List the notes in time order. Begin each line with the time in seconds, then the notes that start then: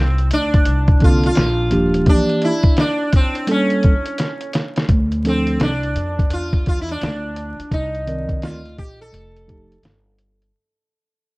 Already playing: C2 C4
0.18 closed hi-hat
0.29 D2 D4, closed hi-hat
0.54 kick, closed hi-hat
0.65 C2, closed hi-hat
0.88 kick, closed hi-hat
1.00 D3 A#3 C4 F4 A4, kick, closed hi-hat
1.23 F4, closed hi-hat
1.35 A#1, snare, closed hi-hat
1.70 D#1 F3 A#3 D4 G4, closed hi-hat
1.94 closed hi-hat
2.06 E3 A#3 D4 G4, kick, closed hi-hat
2.29 closed hi-hat
2.42 E4, closed hi-hat
2.63 kick, closed hi-hat
2.77 D4, snare, closed hi-hat
3.13 C4, kick, closed hi-hat
3.35 closed hi-hat
3.47 G3 A#3 C#4 A4, closed hi-hat
3.51 C#4
3.70 closed hi-hat
3.83 kick, closed hi-hat
4.06 closed hi-hat
4.18 snare, closed hi-hat
4.41 closed hi-hat
4.53 snare, closed hi-hat
4.76 snare, closed hi-hat
4.89 D2, kick, closed hi-hat
5.12 closed hi-hat
5.25 F3 C4 D4 A4, closed hi-hat
5.47 closed hi-hat
5.59 C2 D4, snare, closed hi-hat
5.83 closed hi-hat
5.95 F2, closed hi-hat
6.19 kick, closed hi-hat
6.30 E2 F4, closed hi-hat
6.53 kick, closed hi-hat
6.66 F4, kick, closed hi-hat
6.81 E4
6.89 D4, closed hi-hat
7.01 D2, snare, closed hi-hat
7.36 closed hi-hat
7.59 muted upright bass stroke, closed hi-hat
7.71 C2 D#4, kick, closed hi-hat
7.95 closed hi-hat
8.07 D#3 C4 A#4 D5, closed hi-hat
8.29 kick, closed hi-hat
8.42 D2 F4, snare, closed hi-hat
8.65 closed hi-hat
8.78 A#1 G4, kick, closed hi-hat
9.01 A4, closed hi-hat
9.12 F1, closed hi-hat
9.36 closed hi-hat
9.47 F3 A3 D#4 G4, kick, closed hi-hat
9.72 closed hi-hat
9.83 G1, snare, closed hi-hat
10.19 closed hi-hat
10.42 closed hi-hat